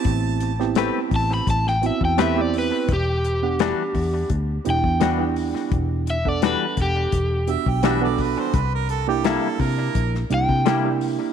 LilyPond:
<<
  \new Staff \with { instrumentName = "Overdriven electric guitar" } { \time 4/4 \key e \minor \tempo 4 = 85 r4. a''16 b''16 a''16 g''16 e''16 g''16 e''16 d''16 b'8 | g'2 r8 g''4.~ | g''8 e''16 d''16 b'8 g'4 r4. | r2 r8 g''4. | }
  \new Staff \with { instrumentName = "Harmonica" } { \time 4/4 \key e \minor a''4 r2. | r1 | r2 r8 e''16 g''16 e''16 d''16 b'16 c''16 | b'16 bes'16 a'16 g'16 a'8 bes'8. r4. r16 | }
  \new Staff \with { instrumentName = "Reed electric piano" } { \time 4/4 \key e \minor <b c' e' g'>8. <b c' e' g'>4. r16 <b c' e' fis'>8 <b c' e' g'>16 <b c' e' g'>8. | r8. <b d' g' fis''>4. r16 <b d' e' g'>8 <b d' fis' g'>16 <b d' e' g'>8.~ | <b d' e' g'>8. <b d' a' fis''>4. r16 <b d' fis' g'>8 <b d' fis' g'>16 <b d' fis' a'>8. | r8. <bes d' e' g'>4. r16 <bes d' e' g'>8 <bes d' e' g'>16 <bes d' e' g'>8. | }
  \new Staff \with { instrumentName = "Clean electric guitar" } { \time 4/4 \key e \minor r4 <a c' g' b'>8 r4. <a c' g' b'>8 r8 | r4 <e g d' fis'>8 r4. <e g d' fis'>8 r8 | r4 <e g d' fis'>8 r4. <e g d' fis'>8 r8 | r4 <c g bes e'>8 r4. <c g bes e'>8 r8 | }
  \new Staff \with { instrumentName = "Fingered electric bass" } { \clef bass \time 4/4 \key e \minor a,,4. a,,8 a,,8. e,4~ e,16 | e,,4. e,8 d,8 e,,16 e,4~ e,16 | e,,4. e,,8 e,,8. b,,4~ b,,16 | c,4. c8 bes,,8 c,16 c4~ c16 | }
  \new DrumStaff \with { instrumentName = "Drums" } \drummode { \time 4/4 <hh bd>8 hh16 sn16 <hh sn>8 <hho bd>16 sn16 <hh bd>16 sn16 hh16 bd16 <hh sn>8 hho8 | <hh bd>8 hh8 <hh sn>8 <hho bd>8 <hh bd>8 hh16 bd16 <hh sn>8 hho16 sn16 | <hh bd>8 hh16 bd16 <hh sn>8 <hh bd>8 <hh bd>8 hh16 bd16 <hh sn>8 <hho bd>8 | <hh bd>8 hh8 <hh sn>8 <hho bd>8 <hh bd>16 sn16 hh16 bd16 <hh sn>8 hho8 | }
>>